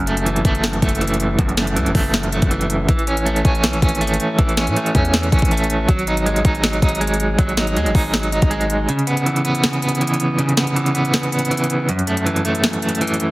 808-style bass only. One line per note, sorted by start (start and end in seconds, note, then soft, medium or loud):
0.00 0.43 F#1 loud
0.45 0.81 F#1 loud
0.82 1.36 F#1 loud
1.39 1.78 F#1 loud
1.76 1.88 C#2 loud
1.86 1.94 F#1 loud
1.95 2.40 F#1 loud
2.42 2.87 F#1 loud
2.89 3.43 A1 loud
3.45 3.65 A1 loud
3.64 3.75 B1 loud
3.74 3.82 A1 loud
3.82 4.18 G#1 loud
4.39 4.69 A1 loud
4.67 4.76 A2 loud
4.95 5.31 E2 loud
5.32 5.42 A1 loud
5.42 5.87 A1 loud
5.89 6.43 G#1 loud
6.45 6.81 G#1 loud
6.82 7.36 G#1 loud
7.39 7.78 G#1 loud
7.76 7.88 D#2 loud
7.86 7.94 G#1 loud
7.95 8.40 G#1 loud
8.42 8.87 G#1 loud